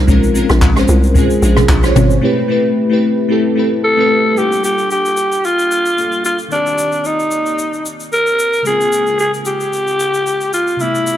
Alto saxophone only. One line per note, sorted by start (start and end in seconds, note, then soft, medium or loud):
3.84 4.39 A4 loud
4.38 4.64 G4 loud
4.65 4.89 G4 medium
4.92 5.47 G4 loud
5.45 6.25 F4 loud
6.25 6.37 F4 medium
6.52 7.07 D4 medium
7.06 7.86 D#4 medium
8.13 8.62 A#4 loud
8.66 9.16 G#4 loud
9.20 9.32 G#4 medium
9.47 10.49 G4 loud
10.54 10.82 F4 medium
10.81 11.17 E4 medium